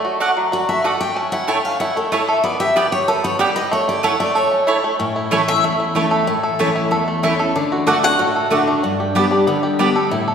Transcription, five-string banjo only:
Already playing: A3 A4
0.05 F#4
0.20 A3
0.37 F#3
0.52 F#4
0.69 A3
0.85 A4
1.00 A3
1.16 C#4
1.33 E4
1.49 A3
1.65 C#4
1.81 E4
1.96 A3
2.12 E4
2.28 A4
2.44 B3
2.60 G4
2.76 B3
2.92 G4
3.08 A4
3.24 B3
3.39 G3
3.56 B3
3.71 A3
3.88 E4
4.04 A4
4.20 A3
4.35 A4
4.51 C#4
4.67 E4
4.84 A3
4.99 C#4
5.16 E4
5.32 A3
5.48 C#4
5.64 A3
5.80 E4
5.96 A3
6.11 A4
6.28 E4
6.43 A4
6.59 C#4
6.75 E4
6.92 A4
7.08 A3
7.23 E4
7.39 A4
7.56 D4
7.72 F#4
7.87 A4
8.03 A3
8.19 F#4
8.36 A4
8.51 F#4
8.68 A3
8.83 D4
9.00 G4
9.16 B3
9.31 D4
9.47 B3
9.63 G4
9.79 B3
9.96 A4
10.11 E4
10.28 A4

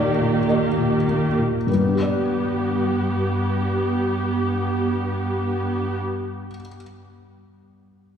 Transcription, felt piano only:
Already playing: D#2 A#2 A#3 D#4 C5 D5
0.20 A#2
0.49 G4 D#5
0.77 A#2
1.08 A#3
1.37 A#2
1.67 G2 B4
1.74 G3
1.81 B3
1.88 D4
1.95 G4
2.02 D5

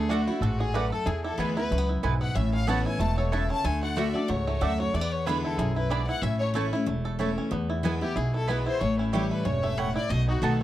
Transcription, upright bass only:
Already playing: D2
0.41 A1
1.06 E2
1.39 D2
1.71 C#2
2.03 B1
2.35 A1
2.99 E1
3.64 D2
4.30 C#2
4.61 D2
4.94 E2
5.58 B1
6.22 A1
6.87 E1
7.51 E2
8.16 B1
8.81 A1
9.46 E1
10.10 B1
10.42 B1

